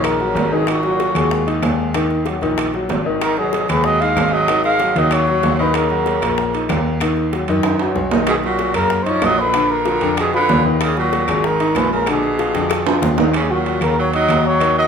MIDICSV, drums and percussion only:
0, 0, Header, 1, 2, 480
1, 0, Start_track
1, 0, Key_signature, -6, "minor"
1, 0, Tempo, 316623
1, 1026, Time_signature, 4, 2, 24, 8
1, 22550, End_track
2, 0, Start_track
2, 0, Title_t, "Drums"
2, 60, Note_on_c, 9, 60, 69
2, 67, Note_on_c, 9, 65, 94
2, 69, Note_on_c, 9, 75, 64
2, 211, Note_off_c, 9, 60, 0
2, 219, Note_off_c, 9, 65, 0
2, 221, Note_off_c, 9, 75, 0
2, 307, Note_on_c, 9, 60, 33
2, 458, Note_off_c, 9, 60, 0
2, 551, Note_on_c, 9, 60, 35
2, 551, Note_on_c, 9, 61, 79
2, 560, Note_on_c, 9, 65, 64
2, 560, Note_on_c, 9, 66, 80
2, 702, Note_off_c, 9, 60, 0
2, 702, Note_off_c, 9, 61, 0
2, 712, Note_off_c, 9, 65, 0
2, 712, Note_off_c, 9, 66, 0
2, 1016, Note_on_c, 9, 60, 68
2, 1029, Note_on_c, 9, 75, 62
2, 1035, Note_on_c, 9, 65, 92
2, 1168, Note_off_c, 9, 60, 0
2, 1181, Note_off_c, 9, 75, 0
2, 1187, Note_off_c, 9, 65, 0
2, 1260, Note_on_c, 9, 60, 34
2, 1412, Note_off_c, 9, 60, 0
2, 1512, Note_on_c, 9, 60, 54
2, 1514, Note_on_c, 9, 65, 62
2, 1514, Note_on_c, 9, 66, 54
2, 1664, Note_off_c, 9, 60, 0
2, 1666, Note_off_c, 9, 65, 0
2, 1666, Note_off_c, 9, 66, 0
2, 1746, Note_on_c, 9, 75, 60
2, 1753, Note_on_c, 9, 60, 34
2, 1762, Note_on_c, 9, 65, 91
2, 1898, Note_off_c, 9, 75, 0
2, 1905, Note_off_c, 9, 60, 0
2, 1913, Note_off_c, 9, 65, 0
2, 1991, Note_on_c, 9, 60, 66
2, 2143, Note_off_c, 9, 60, 0
2, 2240, Note_on_c, 9, 60, 34
2, 2241, Note_on_c, 9, 65, 70
2, 2392, Note_off_c, 9, 60, 0
2, 2392, Note_off_c, 9, 65, 0
2, 2464, Note_on_c, 9, 75, 64
2, 2471, Note_on_c, 9, 65, 83
2, 2471, Note_on_c, 9, 66, 77
2, 2472, Note_on_c, 9, 60, 34
2, 2472, Note_on_c, 9, 61, 81
2, 2616, Note_off_c, 9, 75, 0
2, 2623, Note_off_c, 9, 60, 0
2, 2623, Note_off_c, 9, 61, 0
2, 2623, Note_off_c, 9, 65, 0
2, 2623, Note_off_c, 9, 66, 0
2, 2948, Note_on_c, 9, 60, 64
2, 2949, Note_on_c, 9, 75, 59
2, 2954, Note_on_c, 9, 65, 90
2, 3100, Note_off_c, 9, 60, 0
2, 3101, Note_off_c, 9, 75, 0
2, 3106, Note_off_c, 9, 65, 0
2, 3191, Note_on_c, 9, 60, 34
2, 3343, Note_off_c, 9, 60, 0
2, 3419, Note_on_c, 9, 60, 55
2, 3431, Note_on_c, 9, 65, 61
2, 3431, Note_on_c, 9, 66, 53
2, 3571, Note_off_c, 9, 60, 0
2, 3583, Note_off_c, 9, 65, 0
2, 3583, Note_off_c, 9, 66, 0
2, 3660, Note_on_c, 9, 60, 34
2, 3681, Note_on_c, 9, 65, 62
2, 3812, Note_off_c, 9, 60, 0
2, 3832, Note_off_c, 9, 65, 0
2, 3907, Note_on_c, 9, 60, 70
2, 3909, Note_on_c, 9, 75, 62
2, 3924, Note_on_c, 9, 65, 94
2, 4059, Note_off_c, 9, 60, 0
2, 4060, Note_off_c, 9, 75, 0
2, 4075, Note_off_c, 9, 65, 0
2, 4150, Note_on_c, 9, 60, 34
2, 4302, Note_off_c, 9, 60, 0
2, 4385, Note_on_c, 9, 60, 35
2, 4385, Note_on_c, 9, 61, 82
2, 4393, Note_on_c, 9, 65, 65
2, 4393, Note_on_c, 9, 66, 76
2, 4536, Note_off_c, 9, 60, 0
2, 4536, Note_off_c, 9, 61, 0
2, 4545, Note_off_c, 9, 65, 0
2, 4545, Note_off_c, 9, 66, 0
2, 4873, Note_on_c, 9, 75, 60
2, 4874, Note_on_c, 9, 60, 66
2, 4877, Note_on_c, 9, 65, 94
2, 5025, Note_off_c, 9, 75, 0
2, 5026, Note_off_c, 9, 60, 0
2, 5029, Note_off_c, 9, 65, 0
2, 5109, Note_on_c, 9, 60, 34
2, 5260, Note_off_c, 9, 60, 0
2, 5349, Note_on_c, 9, 60, 57
2, 5371, Note_on_c, 9, 65, 63
2, 5371, Note_on_c, 9, 66, 54
2, 5500, Note_off_c, 9, 60, 0
2, 5522, Note_off_c, 9, 65, 0
2, 5522, Note_off_c, 9, 66, 0
2, 5585, Note_on_c, 9, 60, 36
2, 5599, Note_on_c, 9, 75, 65
2, 5605, Note_on_c, 9, 65, 86
2, 5737, Note_off_c, 9, 60, 0
2, 5750, Note_off_c, 9, 75, 0
2, 5756, Note_off_c, 9, 65, 0
2, 5819, Note_on_c, 9, 60, 68
2, 5970, Note_off_c, 9, 60, 0
2, 6065, Note_on_c, 9, 60, 35
2, 6091, Note_on_c, 9, 65, 65
2, 6216, Note_off_c, 9, 60, 0
2, 6242, Note_off_c, 9, 65, 0
2, 6317, Note_on_c, 9, 75, 68
2, 6320, Note_on_c, 9, 60, 35
2, 6320, Note_on_c, 9, 61, 76
2, 6335, Note_on_c, 9, 65, 87
2, 6335, Note_on_c, 9, 66, 79
2, 6468, Note_off_c, 9, 75, 0
2, 6472, Note_off_c, 9, 60, 0
2, 6472, Note_off_c, 9, 61, 0
2, 6487, Note_off_c, 9, 65, 0
2, 6487, Note_off_c, 9, 66, 0
2, 6795, Note_on_c, 9, 60, 70
2, 6798, Note_on_c, 9, 75, 60
2, 6810, Note_on_c, 9, 65, 92
2, 6947, Note_off_c, 9, 60, 0
2, 6950, Note_off_c, 9, 75, 0
2, 6962, Note_off_c, 9, 65, 0
2, 7033, Note_on_c, 9, 60, 34
2, 7185, Note_off_c, 9, 60, 0
2, 7269, Note_on_c, 9, 60, 52
2, 7275, Note_on_c, 9, 65, 63
2, 7275, Note_on_c, 9, 66, 55
2, 7420, Note_off_c, 9, 60, 0
2, 7427, Note_off_c, 9, 65, 0
2, 7427, Note_off_c, 9, 66, 0
2, 7515, Note_on_c, 9, 60, 34
2, 7522, Note_on_c, 9, 65, 70
2, 7667, Note_off_c, 9, 60, 0
2, 7674, Note_off_c, 9, 65, 0
2, 7745, Note_on_c, 9, 60, 65
2, 7754, Note_on_c, 9, 75, 64
2, 7765, Note_on_c, 9, 65, 91
2, 7897, Note_off_c, 9, 60, 0
2, 7906, Note_off_c, 9, 75, 0
2, 7917, Note_off_c, 9, 65, 0
2, 7992, Note_on_c, 9, 60, 34
2, 8143, Note_off_c, 9, 60, 0
2, 8233, Note_on_c, 9, 60, 34
2, 8233, Note_on_c, 9, 61, 80
2, 8239, Note_on_c, 9, 65, 66
2, 8239, Note_on_c, 9, 66, 82
2, 8384, Note_off_c, 9, 60, 0
2, 8384, Note_off_c, 9, 61, 0
2, 8390, Note_off_c, 9, 65, 0
2, 8390, Note_off_c, 9, 66, 0
2, 8703, Note_on_c, 9, 60, 63
2, 8704, Note_on_c, 9, 75, 59
2, 8719, Note_on_c, 9, 65, 89
2, 8854, Note_off_c, 9, 60, 0
2, 8856, Note_off_c, 9, 75, 0
2, 8871, Note_off_c, 9, 65, 0
2, 8948, Note_on_c, 9, 60, 32
2, 9100, Note_off_c, 9, 60, 0
2, 9186, Note_on_c, 9, 60, 55
2, 9203, Note_on_c, 9, 65, 62
2, 9203, Note_on_c, 9, 66, 55
2, 9338, Note_off_c, 9, 60, 0
2, 9354, Note_off_c, 9, 65, 0
2, 9354, Note_off_c, 9, 66, 0
2, 9423, Note_on_c, 9, 60, 32
2, 9433, Note_on_c, 9, 75, 64
2, 9440, Note_on_c, 9, 65, 91
2, 9575, Note_off_c, 9, 60, 0
2, 9585, Note_off_c, 9, 75, 0
2, 9592, Note_off_c, 9, 65, 0
2, 9670, Note_on_c, 9, 60, 71
2, 9822, Note_off_c, 9, 60, 0
2, 9912, Note_on_c, 9, 60, 34
2, 9923, Note_on_c, 9, 65, 64
2, 10064, Note_off_c, 9, 60, 0
2, 10075, Note_off_c, 9, 65, 0
2, 10146, Note_on_c, 9, 75, 67
2, 10149, Note_on_c, 9, 60, 34
2, 10149, Note_on_c, 9, 61, 80
2, 10155, Note_on_c, 9, 65, 89
2, 10155, Note_on_c, 9, 66, 80
2, 10297, Note_off_c, 9, 75, 0
2, 10301, Note_off_c, 9, 60, 0
2, 10301, Note_off_c, 9, 61, 0
2, 10307, Note_off_c, 9, 65, 0
2, 10307, Note_off_c, 9, 66, 0
2, 10619, Note_on_c, 9, 75, 62
2, 10629, Note_on_c, 9, 60, 65
2, 10636, Note_on_c, 9, 65, 93
2, 10771, Note_off_c, 9, 75, 0
2, 10781, Note_off_c, 9, 60, 0
2, 10788, Note_off_c, 9, 65, 0
2, 10868, Note_on_c, 9, 60, 33
2, 11020, Note_off_c, 9, 60, 0
2, 11111, Note_on_c, 9, 60, 57
2, 11111, Note_on_c, 9, 65, 62
2, 11111, Note_on_c, 9, 66, 55
2, 11262, Note_off_c, 9, 65, 0
2, 11262, Note_off_c, 9, 66, 0
2, 11263, Note_off_c, 9, 60, 0
2, 11340, Note_on_c, 9, 65, 65
2, 11347, Note_on_c, 9, 60, 35
2, 11491, Note_off_c, 9, 65, 0
2, 11498, Note_off_c, 9, 60, 0
2, 11572, Note_on_c, 9, 60, 66
2, 11576, Note_on_c, 9, 65, 90
2, 11582, Note_on_c, 9, 75, 59
2, 11723, Note_off_c, 9, 60, 0
2, 11728, Note_off_c, 9, 65, 0
2, 11734, Note_off_c, 9, 75, 0
2, 11816, Note_on_c, 9, 60, 34
2, 11816, Note_on_c, 9, 65, 84
2, 11968, Note_off_c, 9, 60, 0
2, 11968, Note_off_c, 9, 65, 0
2, 12061, Note_on_c, 9, 60, 33
2, 12061, Note_on_c, 9, 61, 81
2, 12213, Note_off_c, 9, 60, 0
2, 12213, Note_off_c, 9, 61, 0
2, 12301, Note_on_c, 9, 66, 86
2, 12453, Note_off_c, 9, 66, 0
2, 12532, Note_on_c, 9, 65, 98
2, 12535, Note_on_c, 9, 75, 62
2, 12539, Note_on_c, 9, 60, 68
2, 12684, Note_off_c, 9, 65, 0
2, 12687, Note_off_c, 9, 75, 0
2, 12690, Note_off_c, 9, 60, 0
2, 12790, Note_on_c, 9, 60, 32
2, 12941, Note_off_c, 9, 60, 0
2, 13016, Note_on_c, 9, 65, 62
2, 13016, Note_on_c, 9, 66, 54
2, 13024, Note_on_c, 9, 60, 56
2, 13168, Note_off_c, 9, 65, 0
2, 13168, Note_off_c, 9, 66, 0
2, 13175, Note_off_c, 9, 60, 0
2, 13253, Note_on_c, 9, 65, 88
2, 13259, Note_on_c, 9, 75, 63
2, 13267, Note_on_c, 9, 60, 34
2, 13405, Note_off_c, 9, 65, 0
2, 13411, Note_off_c, 9, 75, 0
2, 13419, Note_off_c, 9, 60, 0
2, 13495, Note_on_c, 9, 60, 64
2, 13646, Note_off_c, 9, 60, 0
2, 13735, Note_on_c, 9, 60, 33
2, 13742, Note_on_c, 9, 65, 68
2, 13887, Note_off_c, 9, 60, 0
2, 13894, Note_off_c, 9, 65, 0
2, 13975, Note_on_c, 9, 65, 89
2, 13975, Note_on_c, 9, 66, 79
2, 13976, Note_on_c, 9, 75, 67
2, 13977, Note_on_c, 9, 60, 35
2, 13977, Note_on_c, 9, 61, 82
2, 14126, Note_off_c, 9, 65, 0
2, 14126, Note_off_c, 9, 66, 0
2, 14128, Note_off_c, 9, 60, 0
2, 14128, Note_off_c, 9, 61, 0
2, 14128, Note_off_c, 9, 75, 0
2, 14457, Note_on_c, 9, 75, 64
2, 14459, Note_on_c, 9, 65, 89
2, 14461, Note_on_c, 9, 60, 69
2, 14608, Note_off_c, 9, 75, 0
2, 14610, Note_off_c, 9, 65, 0
2, 14613, Note_off_c, 9, 60, 0
2, 14702, Note_on_c, 9, 60, 34
2, 14854, Note_off_c, 9, 60, 0
2, 14939, Note_on_c, 9, 60, 59
2, 14942, Note_on_c, 9, 65, 64
2, 14942, Note_on_c, 9, 66, 55
2, 15091, Note_off_c, 9, 60, 0
2, 15094, Note_off_c, 9, 65, 0
2, 15094, Note_off_c, 9, 66, 0
2, 15177, Note_on_c, 9, 65, 67
2, 15184, Note_on_c, 9, 60, 34
2, 15328, Note_off_c, 9, 65, 0
2, 15336, Note_off_c, 9, 60, 0
2, 15422, Note_on_c, 9, 65, 95
2, 15425, Note_on_c, 9, 75, 65
2, 15429, Note_on_c, 9, 60, 66
2, 15574, Note_off_c, 9, 65, 0
2, 15576, Note_off_c, 9, 75, 0
2, 15581, Note_off_c, 9, 60, 0
2, 15673, Note_on_c, 9, 60, 35
2, 15825, Note_off_c, 9, 60, 0
2, 15904, Note_on_c, 9, 60, 35
2, 15904, Note_on_c, 9, 61, 87
2, 15908, Note_on_c, 9, 65, 64
2, 15908, Note_on_c, 9, 66, 81
2, 16056, Note_off_c, 9, 60, 0
2, 16056, Note_off_c, 9, 61, 0
2, 16060, Note_off_c, 9, 65, 0
2, 16060, Note_off_c, 9, 66, 0
2, 16383, Note_on_c, 9, 60, 69
2, 16383, Note_on_c, 9, 75, 59
2, 16394, Note_on_c, 9, 65, 92
2, 16534, Note_off_c, 9, 75, 0
2, 16535, Note_off_c, 9, 60, 0
2, 16546, Note_off_c, 9, 65, 0
2, 16631, Note_on_c, 9, 60, 33
2, 16783, Note_off_c, 9, 60, 0
2, 16867, Note_on_c, 9, 60, 56
2, 16871, Note_on_c, 9, 65, 65
2, 16871, Note_on_c, 9, 66, 55
2, 17018, Note_off_c, 9, 60, 0
2, 17022, Note_off_c, 9, 65, 0
2, 17022, Note_off_c, 9, 66, 0
2, 17098, Note_on_c, 9, 75, 66
2, 17109, Note_on_c, 9, 60, 35
2, 17109, Note_on_c, 9, 65, 87
2, 17250, Note_off_c, 9, 75, 0
2, 17260, Note_off_c, 9, 60, 0
2, 17261, Note_off_c, 9, 65, 0
2, 17345, Note_on_c, 9, 60, 71
2, 17497, Note_off_c, 9, 60, 0
2, 17585, Note_on_c, 9, 60, 35
2, 17588, Note_on_c, 9, 65, 70
2, 17737, Note_off_c, 9, 60, 0
2, 17740, Note_off_c, 9, 65, 0
2, 17813, Note_on_c, 9, 75, 66
2, 17825, Note_on_c, 9, 60, 34
2, 17825, Note_on_c, 9, 61, 83
2, 17830, Note_on_c, 9, 65, 92
2, 17830, Note_on_c, 9, 66, 79
2, 17964, Note_off_c, 9, 75, 0
2, 17977, Note_off_c, 9, 60, 0
2, 17977, Note_off_c, 9, 61, 0
2, 17981, Note_off_c, 9, 65, 0
2, 17981, Note_off_c, 9, 66, 0
2, 18289, Note_on_c, 9, 75, 65
2, 18299, Note_on_c, 9, 60, 66
2, 18303, Note_on_c, 9, 65, 90
2, 18441, Note_off_c, 9, 75, 0
2, 18451, Note_off_c, 9, 60, 0
2, 18454, Note_off_c, 9, 65, 0
2, 18546, Note_on_c, 9, 60, 34
2, 18697, Note_off_c, 9, 60, 0
2, 18785, Note_on_c, 9, 60, 52
2, 18791, Note_on_c, 9, 65, 64
2, 18791, Note_on_c, 9, 66, 54
2, 18937, Note_off_c, 9, 60, 0
2, 18943, Note_off_c, 9, 65, 0
2, 18943, Note_off_c, 9, 66, 0
2, 19020, Note_on_c, 9, 60, 74
2, 19021, Note_on_c, 9, 65, 69
2, 19172, Note_off_c, 9, 60, 0
2, 19172, Note_off_c, 9, 65, 0
2, 19249, Note_on_c, 9, 75, 63
2, 19263, Note_on_c, 9, 65, 89
2, 19264, Note_on_c, 9, 60, 81
2, 19400, Note_off_c, 9, 75, 0
2, 19415, Note_off_c, 9, 60, 0
2, 19415, Note_off_c, 9, 65, 0
2, 19504, Note_on_c, 9, 65, 99
2, 19656, Note_off_c, 9, 65, 0
2, 19742, Note_on_c, 9, 66, 77
2, 19749, Note_on_c, 9, 61, 101
2, 19894, Note_off_c, 9, 66, 0
2, 19901, Note_off_c, 9, 61, 0
2, 19979, Note_on_c, 9, 66, 88
2, 19983, Note_on_c, 9, 61, 74
2, 20131, Note_off_c, 9, 66, 0
2, 20134, Note_off_c, 9, 61, 0
2, 20216, Note_on_c, 9, 75, 60
2, 20227, Note_on_c, 9, 65, 91
2, 20368, Note_off_c, 9, 75, 0
2, 20378, Note_off_c, 9, 65, 0
2, 20712, Note_on_c, 9, 65, 64
2, 20712, Note_on_c, 9, 66, 50
2, 20863, Note_off_c, 9, 65, 0
2, 20863, Note_off_c, 9, 66, 0
2, 20937, Note_on_c, 9, 75, 61
2, 20949, Note_on_c, 9, 65, 86
2, 21089, Note_off_c, 9, 75, 0
2, 21100, Note_off_c, 9, 65, 0
2, 21428, Note_on_c, 9, 65, 67
2, 21579, Note_off_c, 9, 65, 0
2, 21656, Note_on_c, 9, 75, 68
2, 21680, Note_on_c, 9, 65, 83
2, 21680, Note_on_c, 9, 66, 76
2, 21808, Note_off_c, 9, 75, 0
2, 21832, Note_off_c, 9, 65, 0
2, 21832, Note_off_c, 9, 66, 0
2, 22141, Note_on_c, 9, 75, 61
2, 22153, Note_on_c, 9, 65, 93
2, 22292, Note_off_c, 9, 75, 0
2, 22304, Note_off_c, 9, 65, 0
2, 22550, End_track
0, 0, End_of_file